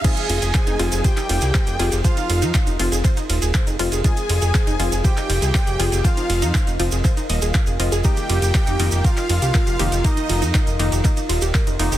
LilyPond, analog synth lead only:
\new Staff \with { instrumentName = "Analog synth lead" } { \time 4/4 \key f \minor \tempo 4 = 120 aes'2 g'2 | f'4. r2 r8 | aes'2 g'2 | f'4. r2 r8 |
g'2 f'2 | ees'4. r2 r8 | }